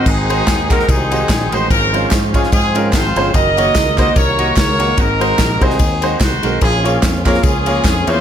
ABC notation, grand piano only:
X:1
M:4/4
L:1/8
Q:"Swing" 1/4=146
K:Abmix
V:1 name="Grand piano"
z [A,EGc] z [A,EGB] z [A,EGc] z [A,EGc] | z [A,DFc] z [A,DFd] z [A,DFB] z [A,DFc] | z [B,EGd] z [B,EGc] z [B,EGe] z [B,EGd] | z [A,EGc] z [A,EGc] z [A,EGc] z [A,EGB] |
z [B,FAd] z [B,FAd] z [B,FAd] z [B,FAd] |]
V:2 name="Grand piano" clef=bass
A,,3 z4 z | A,,3 z4 z | z8 | A,,3 z4 z |
B,,3 z4 z |]